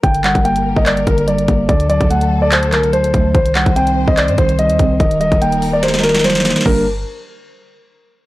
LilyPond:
<<
  \new Staff \with { instrumentName = "Grand piano" } { \time 4/4 \key g \minor \tempo 4 = 145 g''8 fis''8 g''8. ees''16 d''8 bes'8 d''4 | d''8 d''8 fis''8. d''16 c''8 bes'8 c''4 | c''8 fis''8 g''8. ees''16 d''8 c''8 ees''4 | ees''8 ees''8 g''8. d''16 c''8 bes'8 c''4 |
bes'8 r2. r8 | }
  \new Staff \with { instrumentName = "String section" } { \time 4/4 \key g \minor <g bes'>1 | <fis a'>1 | <ees c''>1 | <g ees' bes'>1 |
<g d' bes'>8 r2. r8 | }
  \new Staff \with { instrumentName = "Tine electric piano" } { \clef bass \time 4/4 \key g \minor d8 g8 bes4. d8 g8 bes8 | d8 fis8 a4. d8 fis8 a8 | ees8 g8 c'4. ees8 g8 c'8 | ees8 g8 bes4. ees8 g8 bes8 |
<d g bes d'>8 r2. r8 | }
  \new Staff \with { instrumentName = "808-style bass" } { \clef bass \time 4/4 \key g \minor g,,8. g,,4 g,,8. g,,4 g,,8 | d,8. d,4.~ d,16 c,8 d,8 d,8 | c,8. c,4 c,8 g,16 c,8. ees,16 c,8 | ees,,8. ees,,2. r16 |
g,,4 r2. | }
  \new DrumStaff \with { instrumentName = "Drums" } \drummode { \time 4/4 <hh bd>16 hh16 <hc hh>16 <hh bd>16 hh16 hh8 bd16 <hc hh>16 hh16 <hh bd>16 hh16 hh16 hh16 <hh bd>8 | <hh bd>16 hh16 hh16 <hh bd>16 hh16 hh8. <hc hh>16 hh16 <hc hh>16 hh16 hh16 hh16 <hh bd>8 | <hh bd>16 hh16 <hc hh>16 <hh bd>16 hh16 hh8 bd16 <hc hh>16 hh16 <hh bd>16 hh16 hh16 hh16 <hh bd>8 | <hh bd>16 hh16 hh16 <hh bd>16 hh16 hh16 hho8 <hh sn>32 sn32 <hh sn>32 sn32 <hh sn>32 sn32 <hh sn>32 sn32 <hh sn>32 sn32 <hh sn>32 sn32 <hh sn>32 <hh sn>32 <hh sn>32 <hh sn>32 |
<cymc bd>4 r4 r4 r4 | }
>>